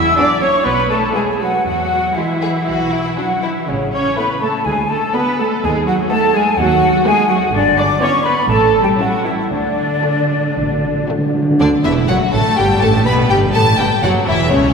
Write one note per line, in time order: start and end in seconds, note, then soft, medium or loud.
0.00 0.17 E4 medium
0.00 0.17 E5 medium
0.00 0.17 E6 medium
0.17 0.53 B3 medium
0.17 0.25 D4 medium
0.17 0.53 E4 medium
0.17 0.53 G#4 medium
0.17 0.41 D5 medium
0.17 0.41 D6 medium
0.41 0.49 C#4 medium
0.41 0.65 C#5 medium
0.41 0.65 C#6 medium
0.65 1.04 B1 medium
0.65 0.89 B3 medium
0.65 0.90 B4 medium
0.65 0.89 B5 medium
0.88 1.14 A3 medium
0.88 1.15 A4 medium
0.88 1.13 A5 medium
1.14 1.22 G#3 medium
1.14 1.52 B3 soft
1.14 1.52 E4 medium
1.14 1.39 G#4 medium
1.14 1.52 G#4 medium
1.14 1.20 G#5 medium
1.39 1.63 F#3 medium
1.39 1.64 F#4 medium
1.39 1.63 F#5 medium
1.65 2.05 E2 medium
1.65 2.14 F#3 medium
1.65 2.15 F#4 medium
1.65 2.15 F#5 medium
2.15 3.17 E3 soft
2.15 2.25 G#3 soft
2.15 3.17 E4 medium
2.15 2.54 G#4 soft
2.15 2.88 E5 medium
2.41 2.49 G#4 medium
2.68 3.07 B1 medium
2.68 2.92 F#4 medium
2.92 3.17 E4 medium
3.17 3.43 F#3 soft
3.17 3.26 D4 soft
3.17 3.43 F#4 soft
3.17 3.55 G#4 soft
3.17 3.42 F#5 medium
3.42 3.67 E3 soft
3.42 3.50 E4 soft
3.42 3.68 E4 soft
3.42 3.68 E5 soft
3.67 4.08 A1 medium
3.67 3.93 C#3 medium
3.67 3.76 C#4 soft
3.67 3.93 C#5 medium
3.92 4.17 C#4 soft
3.92 4.17 C#5 medium
3.92 4.17 C#6 medium
4.17 4.53 A3 soft
4.17 4.25 B3 medium
4.17 4.53 E4 soft
4.17 4.53 A4 soft
4.17 4.42 B4 medium
4.17 4.41 B5 medium
4.41 4.50 A3 medium
4.41 4.65 A4 medium
4.41 4.65 A5 medium
4.65 5.04 D2 medium
4.65 5.34 D3 medium
4.65 4.89 G#3 medium
4.65 4.73 G#4 medium
4.65 4.89 G#5 medium
4.89 4.98 A3 medium
4.89 5.14 A4 medium
4.89 5.14 A5 medium
5.13 5.50 B3 soft
5.13 5.38 B3 medium
5.13 5.50 D4 medium
5.13 5.51 F#4 medium
5.13 5.38 B4 medium
5.13 5.38 B5 medium
5.38 5.63 A3 medium
5.38 5.62 A4 medium
5.38 5.44 A5 medium
5.62 6.00 D#2 medium
5.62 5.86 G#3 medium
5.62 5.86 G#4 medium
5.62 5.68 G#5 medium
5.86 6.10 F#3 medium
5.86 5.94 F#4 medium
5.86 5.92 F#5 medium
6.10 6.46 A3 medium
6.10 6.34 A3 medium
6.10 6.46 B3 medium
6.10 6.46 F#4 medium
6.10 6.34 A4 medium
6.10 6.34 A5 medium
6.34 6.58 G#3 medium
6.34 6.42 G#4 medium
6.34 6.58 G#5 medium
6.58 6.96 D#2 medium
6.58 7.05 F#3 medium
6.58 7.04 F#4 medium
6.58 7.05 F#5 medium
7.05 7.29 G#3 medium
7.05 7.41 A3 medium
7.05 7.41 B3 medium
7.05 7.41 F#4 medium
7.05 7.29 G#4 medium
7.05 7.29 G#5 medium
7.29 7.37 F#3 medium
7.29 7.53 F#4 medium
7.29 7.53 F#5 medium
7.53 7.91 G1 medium
7.53 7.77 D3 medium
7.53 7.61 D4 medium
7.53 7.76 D5 medium
7.77 8.01 D4 medium
7.77 7.85 D5 medium
7.77 8.01 D6 medium
8.00 8.36 B3 medium
8.00 8.24 C#4 medium
8.00 8.37 E4 medium
8.00 8.10 C#5 medium
8.00 8.24 C#6 medium
8.24 8.48 B3 medium
8.24 8.33 B4 medium
8.24 8.49 B5 medium
8.49 8.88 A1 medium
8.49 8.81 A3 medium
8.49 8.82 A4 medium
8.49 8.81 A5 medium
8.81 8.98 G3 medium
8.81 8.99 G4 medium
8.81 8.89 G5 medium
8.98 9.24 F#3 medium
8.98 9.37 A3 medium
8.98 9.37 C#4 medium
8.98 9.37 E4 medium
8.98 9.24 F#4 medium
8.98 9.24 F#5 medium
9.23 9.31 E3 soft
9.23 9.51 E4 medium
9.23 9.30 E5 medium
9.49 9.92 D2 medium
9.49 11.04 D3 medium
9.49 9.58 D3 soft
9.49 11.04 D4 medium
9.49 11.04 D5 medium
9.59 9.66 D3 soft
9.67 9.73 D3 soft
9.75 9.81 D3 soft
9.83 9.90 D3 soft
9.91 9.98 D3 soft
9.99 10.06 D3 soft
9.99 10.42 D4 soft
9.99 10.42 F#4 soft
10.03 10.13 D3 soft
10.03 10.42 A3 soft
10.15 10.21 D3 soft
10.23 10.30 D3 soft
10.31 10.37 D3 soft
10.39 10.45 D3 soft
10.47 10.53 D3 soft
10.54 10.97 A1 medium
10.54 10.61 D3 soft
10.62 10.69 D3 medium
10.70 10.77 D3 medium
10.78 10.85 D3 medium
10.87 10.93 D3 medium
10.94 11.01 D3 medium
11.02 11.09 D3 medium
11.07 11.17 D3 medium
11.07 11.46 A3 soft
11.07 11.47 D4 soft
11.07 11.46 F#4 soft
11.18 11.25 D3 medium
11.26 11.33 D3 medium
11.34 11.41 D3 medium
11.42 11.49 D3 medium
11.50 11.57 D3 medium
11.59 11.67 D2 medium
11.59 11.68 D2 medium
11.59 11.68 D3 medium
11.59 11.67 D4 medium
11.59 11.68 D5 medium
11.84 12.08 E1 medium
11.84 12.08 E2 medium
11.84 11.92 E3 medium
11.84 12.08 E4 medium
11.84 11.92 E5 medium
12.08 12.17 F#1 medium
12.08 12.16 F#2 medium
12.08 12.17 F#3 medium
12.08 12.33 F#4 medium
12.08 12.16 F#5 medium
12.33 12.42 A1 medium
12.33 12.41 A2 medium
12.33 12.57 A3 medium
12.33 12.57 A4 medium
12.33 12.57 A5 medium
12.57 12.81 G1 medium
12.57 12.81 G2 medium
12.57 12.82 G3 medium
12.57 12.66 G4 medium
12.57 12.82 G5 medium
12.81 13.06 A1 medium
12.81 13.05 A2 medium
12.81 13.06 A3 medium
12.81 12.90 A4 medium
12.81 13.05 A5 medium
13.06 13.31 B1 medium
13.06 13.30 B2 medium
13.06 13.30 B3 medium
13.06 13.30 B4 medium
13.06 13.14 B5 medium
13.30 13.54 G1 medium
13.30 13.54 G2 medium
13.30 13.55 G3 medium
13.30 13.38 G4 medium
13.30 13.38 G5 medium
13.54 13.79 A1 medium
13.54 13.79 A2 medium
13.54 13.63 A3 medium
13.54 13.62 A4 medium
13.54 13.79 A5 medium
13.79 13.87 G1 medium
13.79 13.87 G2 medium
13.79 13.87 G3 medium
13.79 13.87 G4 medium
13.79 14.03 G5 medium
14.03 14.11 F#1 medium
14.03 14.11 F#2 medium
14.03 14.26 F#3 medium
14.03 14.11 F#4 medium
14.03 14.11 F#5 medium
14.27 14.50 E1 medium
14.27 14.50 E2 medium
14.27 14.51 E3 medium
14.27 14.50 E4 medium
14.27 14.50 E5 medium
14.51 14.73 C#2 medium
14.51 14.73 C#3 medium
14.51 14.73 C#4 medium
14.51 14.73 C#5 medium